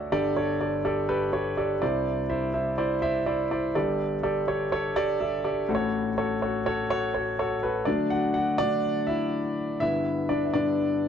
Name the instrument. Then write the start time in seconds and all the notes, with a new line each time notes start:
grand piano
Already playing: F#4 A4 B4 C#5 D5 E5 F#5
0.12 G1 G2 G4 A4 D5
0.36 G4 A4 C#5
0.61 G4 A4 D5
0.85 G4 A4 D5
1.09 G4 A4 B4
1.33 G4 A4 C#5
1.57 G4 A4 D5
1.81 C2 C3 E4 C5 D5
2.29 E4 C5 E5
2.54 E4 C5 E5
2.78 E4 C5 D5
3.02 E4 C5 E5
3.26 E4 C5 D5
3.51 E4 C5 D5
3.75 G1 G2 G4 A4 D5
4.23 G4 A4 D5
4.48 G4 A4 C#5
4.72 G4 A4 C#5
4.96 G4 A4 D5
5.20 G4 A4 E5
5.45 G4 A4 D5
5.69 A1 A2 F#4 A4 C5
5.75 C#5
6.18 F#4 A4 C#5
6.42 F#4 A4 C#5
6.66 F#4 A4 C#5
6.90 F#4 A4 C#5
7.14 F#4 A4 C#5
7.39 F#4 A4 C#5
7.63 F#4 A4 B4
7.85 D3 F#3 A3 D4 D5
8.10 F#4 F#5
8.34 F#4 F#5
8.58 D3 F#3 A3 D4 D5
9.07 E4 E5
9.80 G2 D3 B3 E4 E5
10.29 D4 D5
10.45 E5
10.54 G2 D3 B3 D4 D5